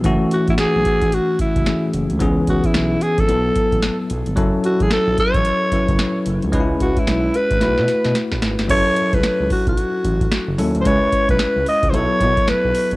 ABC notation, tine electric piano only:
X:1
M:4/4
L:1/8
Q:"Swing 16ths" 1/4=111
K:F#m
V:1 name="Tine electric piano"
[E,A,CF]6 [E,A,CG]2 | [E,B,CG]4 [F,B,EA]4 | [F,CEA]4- [F,CEA] [F,CEB]3 | [G,C^DEB]4 [A,EFB]4 |
[F,CEA]6- [F,CEA] [F,CEA] | [G,CEB]4 [F,B,EA]4 |]